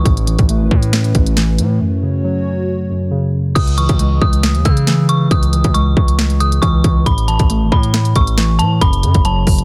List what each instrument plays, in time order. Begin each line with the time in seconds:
Already playing: analog synth pad E4
0.05 808-style bass A1, synth keys A2, analog synth pad A3 C#4 B4, kick, closed hi-hat
0.17 closed hi-hat
0.27 synth keys E3, closed hi-hat
0.39 808-style bass A1, kick, closed hi-hat
0.49 synth keys A3, closed hi-hat
0.61 808-style bass G#1
0.71 808-style bass A2, kick
0.83 closed hi-hat
0.93 snare, closed hi-hat
1.04 closed hi-hat
1.15 808-style bass A1, synth keys A2, kick, closed hi-hat
1.26 closed hi-hat
1.37 synth keys E3, snare, closed hi-hat
1.58 808-style bass A2, closed hi-hat
1.80 synth keys F#2, analog synth pad C#4 F#4 C#5
2.03 synth keys C#3
2.24 synth keys F#3
2.90 synth keys F#2
3.11 synth keys C#3
3.55 808-style bass C#2, synth keys C#3, synth bell D#6, kick, closed hi-hat, crash
3.67 closed hi-hat
3.77 synth keys E3, synth bell C#6, closed hi-hat
3.89 808-style bass C#2, kick, closed hi-hat
3.99 synth keys G#3, closed hi-hat
4.22 808-style bass C#2, synth bell D#6, kick
4.33 closed hi-hat
4.43 snare, closed hi-hat
4.55 808-style bass D#2, closed hi-hat
4.65 808-style bass C#3, synth keys C#3, synth bell E6, kick, closed hi-hat
4.77 closed hi-hat
4.87 synth keys E3, snare, closed hi-hat
5.09 synth bell C#6, closed hi-hat
5.31 808-style bass C#2, synth keys C#3, synth bell D#6, kick, closed hi-hat
5.43 closed hi-hat
5.53 synth keys E3, closed hi-hat
5.64 808-style bass C#2, kick, closed hi-hat
5.74 synth keys G#3, synth bell C#6, closed hi-hat
5.97 808-style bass C#2, kick
6.08 closed hi-hat
6.19 snare, closed hi-hat
6.30 closed hi-hat
6.40 synth keys C#3, synth bell D#6, closed hi-hat
6.52 closed hi-hat
6.62 808-style bass C#2, synth keys E3, synth bell C#6, kick, closed hi-hat
6.84 808-style bass C#2, kick, closed hi-hat
7.06 808-style bass A1, synth keys A2, synth bell B5, kick, closed hi-hat
7.18 closed hi-hat
7.28 synth keys E3, synth bell A5, closed hi-hat
7.39 808-style bass A1, kick, closed hi-hat
7.50 synth keys A3, closed hi-hat
7.62 808-style bass G#1
7.72 808-style bass A2, synth bell B5, kick
7.83 closed hi-hat
7.94 snare, closed hi-hat
8.05 closed hi-hat
8.15 808-style bass A1, synth keys A2, synth bell C#6, kick, closed hi-hat
8.27 closed hi-hat
8.38 synth keys E3, snare, closed hi-hat
8.59 808-style bass A2, synth bell A5, closed hi-hat
8.81 808-style bass F#1, synth keys F#2, synth bell B5, kick, closed hi-hat
8.93 closed hi-hat
9.03 808-style bass F#2, synth keys C#3, closed hi-hat
9.14 808-style bass F#1, kick, closed hi-hat
9.25 synth keys F#3, synth bell A5, closed hi-hat
9.47 808-style bass F#1, kick, open hi-hat
9.59 closed hi-hat